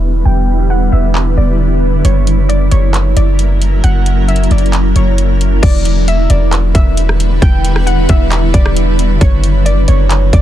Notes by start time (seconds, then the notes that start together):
Already playing: E1 D3 G3 B3 E4 B4
0.25 E1 E4 G5
0.70 F#5
0.92 E1 E5
1.15 clap
1.37 E1 D5
2.05 F#1 C#3 F#3 A#3 A#4 C#5, closed hi-hat
2.27 closed hi-hat
2.49 D5, closed hi-hat
2.71 F#1 C#5, closed hi-hat
2.94 clap, closed hi-hat
3.17 F#1 D5, closed hi-hat
3.39 closed hi-hat
3.62 closed hi-hat
3.84 F#1 F#5, closed hi-hat
4.06 closed hi-hat
4.28 E5, closed hi-hat
4.36 closed hi-hat
4.43 closed hi-hat
4.51 F#1 D5, closed hi-hat
4.58 closed hi-hat
4.66 closed hi-hat
4.73 clap, closed hi-hat
4.96 F#1 C#5, closed hi-hat
5.18 closed hi-hat
5.41 closed hi-hat
5.63 E1 D3 G3 B3 E4 B4 D5, kick, closed hi-hat, crash
5.85 closed hi-hat
6.08 E5, closed hi-hat
6.30 E1 D5, closed hi-hat
6.52 clap, closed hi-hat
6.75 E1 E5, kick, closed hi-hat
6.97 closed hi-hat
7.09 cross-stick
7.20 closed hi-hat
7.42 E1 G5, kick, closed hi-hat
7.65 closed hi-hat
7.76 cross-stick
7.87 F#5, closed hi-hat
8.09 E1 E5, kick, closed hi-hat
8.32 clap, closed hi-hat
8.54 E1 D5, kick, closed hi-hat
8.66 cross-stick
8.76 closed hi-hat
8.99 closed hi-hat
9.21 F#1 C#3 F#3 A#3 F#4 A#4 C#5, kick, closed hi-hat
9.44 closed hi-hat
9.66 D5, closed hi-hat
9.88 F#1 C#5, closed hi-hat
10.10 clap, closed hi-hat
10.33 F#1 D5, kick, closed hi-hat